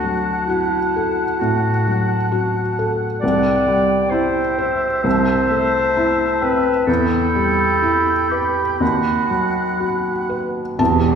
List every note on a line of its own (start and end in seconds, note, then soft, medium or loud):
0.00 1.37 D2 soft
0.00 0.77 F#3 soft
0.00 0.46 F#4 medium
0.00 3.82 F#5 soft
0.00 2.92 A5 soft
0.46 1.41 E4 medium
0.46 1.23 F#4 soft
0.96 1.69 A4 soft
1.40 2.14 A2 soft
1.40 2.77 F#4 medium
1.87 2.60 F#3 soft
2.32 3.04 F#4 soft
2.79 3.23 A4 soft
3.20 5.01 C2 soft
3.20 4.12 D5 medium
3.20 5.08 G5 medium
3.68 4.40 G3 soft
4.10 4.86 E4 soft
4.10 5.03 C5 medium
4.10 6.84 E5 medium
4.58 5.05 C5 soft
5.03 6.84 C2 medium
5.03 6.44 C5 medium
5.03 6.90 A5 soft
5.50 6.24 A3 soft
5.97 6.70 E4 soft
6.42 6.88 C4 soft
6.42 6.86 B4 medium
6.87 8.77 E2 medium
6.87 8.33 A4 medium
6.87 8.78 G5 medium
6.87 10.47 B5 medium
7.35 8.12 G3 soft
7.82 8.61 E4 soft
8.31 8.81 G4 medium
8.31 8.81 B4 soft
8.79 10.75 D#2 soft
8.79 10.30 F#4 soft
8.79 10.44 F#5 soft
9.30 10.10 F#3 soft
9.80 10.60 F#4 soft
10.29 10.79 B4 soft
10.79 11.15 E1 medium
10.79 11.15 E2 soft
10.79 11.15 E2 medium
10.79 11.15 B3 medium
10.79 11.15 G4 medium
10.79 11.15 A5 medium